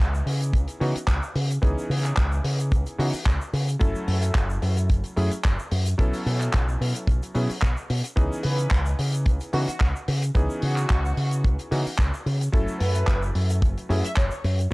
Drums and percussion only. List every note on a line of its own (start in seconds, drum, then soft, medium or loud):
0.00 kick loud
0.14 shaker soft
0.27 open hi-hat loud
0.41 closed hi-hat medium
0.41 shaker medium
0.53 kick loud
0.53 closed hi-hat medium
0.53 shaker medium
0.68 closed hi-hat soft
0.68 shaker soft
0.81 open hi-hat medium
0.96 closed hi-hat medium
0.96 shaker medium
1.08 kick loud
1.08 clap loud
1.08 closed hi-hat medium
1.08 shaker medium
1.23 shaker medium
1.36 open hi-hat loud
1.51 closed hi-hat medium
1.51 shaker medium
1.63 kick loud
1.63 closed hi-hat medium
1.63 shaker medium
1.78 shaker soft
1.91 open hi-hat loud
2.04 clap soft
2.04 closed hi-hat medium
2.04 shaker medium
2.17 kick loud
2.17 clap loud
2.17 closed hi-hat medium
2.17 shaker medium
2.32 shaker soft
2.45 open hi-hat loud
2.59 closed hi-hat medium
2.59 shaker medium
2.72 kick loud
2.72 closed hi-hat medium
2.72 shaker medium
2.86 closed hi-hat soft
2.86 shaker medium
3.00 open hi-hat loud
3.13 open hi-hat medium
3.13 shaker medium
3.26 kick loud
3.26 clap loud
3.26 shaker medium
3.41 shaker soft
3.54 open hi-hat loud
3.68 closed hi-hat medium
3.68 shaker medium
3.81 kick loud
3.81 closed hi-hat medium
3.81 shaker medium
3.95 shaker soft
4.08 open hi-hat loud
4.22 closed hi-hat medium
4.22 shaker medium
4.35 kick loud
4.35 clap loud
4.35 closed hi-hat medium
4.35 shaker medium
4.50 shaker medium
4.62 open hi-hat loud
4.77 closed hi-hat medium
4.77 shaker medium
4.90 kick loud
4.90 closed hi-hat medium
4.90 shaker medium
5.04 closed hi-hat medium
5.04 shaker soft
5.17 open hi-hat medium
5.31 closed hi-hat medium
5.31 shaker medium
5.44 kick loud
5.44 clap loud
5.44 closed hi-hat medium
5.44 shaker medium
5.59 shaker soft
5.71 open hi-hat loud
5.86 closed hi-hat medium
5.86 shaker medium
5.99 kick loud
5.99 closed hi-hat medium
5.99 shaker medium
6.14 open hi-hat medium
6.14 shaker medium
6.27 open hi-hat loud
6.40 clap soft
6.40 closed hi-hat medium
6.40 shaker medium
6.53 kick loud
6.53 clap loud
6.53 closed hi-hat medium
6.53 shaker medium
6.69 shaker soft
6.82 open hi-hat loud
6.94 closed hi-hat medium
6.94 shaker medium
7.07 kick loud
7.07 closed hi-hat medium
7.07 shaker medium
7.23 closed hi-hat soft
7.23 shaker soft
7.35 open hi-hat medium
7.50 open hi-hat medium
7.50 shaker medium
7.62 kick loud
7.62 clap loud
7.62 closed hi-hat medium
7.62 shaker medium
7.77 shaker soft
7.90 open hi-hat loud
8.04 closed hi-hat medium
8.04 shaker medium
8.17 kick loud
8.17 closed hi-hat medium
8.17 shaker medium
8.32 shaker medium
8.43 open hi-hat loud
8.58 closed hi-hat medium
8.58 shaker medium
8.71 kick loud
8.71 clap loud
8.71 closed hi-hat medium
8.71 shaker medium
8.86 shaker medium
8.99 open hi-hat loud
9.12 closed hi-hat medium
9.12 shaker medium
9.26 kick loud
9.26 closed hi-hat medium
9.26 shaker medium
9.40 closed hi-hat soft
9.40 shaker soft
9.53 open hi-hat loud
9.68 closed hi-hat medium
9.68 shaker medium
9.80 kick loud
9.80 clap loud
9.80 closed hi-hat medium
9.80 shaker medium
9.96 shaker soft
10.08 open hi-hat loud
10.22 closed hi-hat medium
10.22 shaker medium
10.35 kick loud
10.35 closed hi-hat medium
10.35 shaker medium
10.50 shaker medium
10.62 open hi-hat medium
10.76 clap soft
10.76 closed hi-hat medium
10.76 shaker medium
10.90 kick loud
10.90 clap loud
10.90 closed hi-hat medium
10.90 shaker medium
11.05 shaker soft
11.17 open hi-hat medium
11.31 closed hi-hat medium
11.31 shaker medium
11.45 kick loud
11.45 closed hi-hat medium
11.45 shaker medium
11.59 closed hi-hat medium
11.59 shaker soft
11.72 open hi-hat loud
11.86 open hi-hat medium
11.86 shaker medium
11.99 kick loud
11.99 clap loud
11.99 shaker medium
12.14 shaker medium
12.27 open hi-hat loud
12.41 closed hi-hat medium
12.41 shaker medium
12.54 kick loud
12.54 closed hi-hat medium
12.54 shaker medium
12.68 shaker medium
12.80 open hi-hat loud
12.95 closed hi-hat medium
12.95 shaker medium
13.07 kick loud
13.07 clap loud
13.07 closed hi-hat medium
13.07 shaker medium
13.23 shaker soft
13.35 open hi-hat medium
13.50 closed hi-hat medium
13.50 shaker medium
13.62 kick loud
13.62 closed hi-hat medium
13.62 shaker medium
13.78 closed hi-hat soft
13.78 shaker medium
13.90 open hi-hat loud
14.04 closed hi-hat medium
14.04 shaker medium
14.16 kick loud
14.16 clap loud
14.16 closed hi-hat medium
14.16 shaker medium
14.31 shaker soft
14.44 open hi-hat loud
14.59 closed hi-hat medium
14.59 shaker medium